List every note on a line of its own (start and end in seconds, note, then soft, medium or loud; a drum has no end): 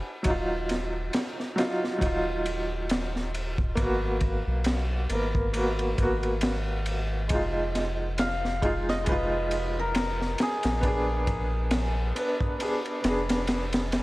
0.00 0.19 B3 medium
0.00 0.21 D4 medium
0.00 0.22 G#4 medium
0.23 1.10 D#1 medium
0.23 1.52 F#3 medium
0.23 1.53 D#4 medium
0.23 kick loud
0.23 ride medium
0.30 1.55 F4 medium
0.69 snare soft
0.69 ride medium
1.13 snare loud
1.13 ride medium
1.40 snare soft
1.56 1.96 F#3 medium
1.56 1.97 D#4 medium
1.56 1.98 F4 loud
1.56 snare medium
1.56 ride medium
1.84 snare soft
1.98 3.79 D#1 medium
1.98 3.72 F#3 medium
1.98 3.74 D#4 medium
1.98 kick loud
1.98 ride medium
2.06 3.75 F4 loud
2.46 ride medium
2.89 snare loud
2.89 ride medium
3.16 snare soft
3.35 ride medium
3.58 kick medium
3.75 4.42 G#1 medium
3.75 5.04 A#3 medium
3.75 5.06 B3 medium
3.75 kick loud
3.75 ride medium
3.82 5.08 F#4 loud
4.21 kick medium
4.21 ride medium
4.47 5.07 B1 loud
4.64 snare loud
4.64 ride medium
5.09 5.95 G#1 medium
5.09 5.49 A#3 medium
5.09 5.50 B3 medium
5.09 5.51 A#4 medium
5.09 ride medium
5.35 kick medium
5.53 5.93 A#3 medium
5.53 5.94 B3 medium
5.53 5.95 F#4 medium
5.53 ride medium
5.79 ride soft
5.96 7.32 G#1 medium
5.96 7.25 A#3 medium
5.96 7.27 B3 medium
5.96 kick medium
5.96 ride medium
6.03 7.28 F#4 loud
6.23 ride soft
6.41 snare loud
6.41 ride medium
6.86 ride medium
7.28 10.36 F1 medium
7.28 8.57 G#3 medium
7.28 8.59 D#4 medium
7.28 kick loud
7.28 ride medium
7.35 8.60 F4 medium
7.75 snare soft
7.75 ride medium
8.18 10.42 F5 loud
8.18 snare loud
8.18 ride medium
8.45 snare soft
8.62 9.02 G#3 medium
8.62 9.03 D#4 medium
8.62 9.04 F4 loud
8.62 kick medium
8.62 ride medium
8.89 11.27 D#5 loud
8.89 snare soft
9.04 10.78 G#3 medium
9.04 10.79 D#4 medium
9.04 kick loud
9.04 ride medium
9.09 10.81 F4 medium
9.09 9.85 B4 medium
9.51 ride medium
9.79 12.62 A#4 medium
9.95 snare loud
9.95 ride medium
10.22 snare soft
10.38 snare loud
10.38 ride medium
10.43 13.46 G#4 medium
10.63 12.12 A#1 loud
10.63 snare medium
10.63 ride medium
10.81 12.10 B3 medium
10.81 12.12 D4 medium
10.81 kick loud
10.81 ride medium
10.88 12.13 G#4 loud
11.27 kick medium
11.27 ride medium
11.71 snare loud
11.71 ride medium
12.15 12.55 B3 medium
12.15 12.56 D4 medium
12.15 12.57 B4 medium
12.15 ride medium
12.41 kick medium
12.59 12.99 B3 medium
12.59 13.00 D4 medium
12.59 13.01 G#4 medium
12.59 ride medium
12.86 ride soft
13.02 14.03 F1 medium
13.02 14.03 B3 medium
13.02 14.03 D4 medium
13.02 snare loud
13.02 ride medium
13.08 14.03 G#4 medium
13.29 snare loud
13.29 ride medium
13.47 snare loud
13.47 ride medium
13.73 snare loud
13.73 ride medium
13.92 snare medium
13.92 ride medium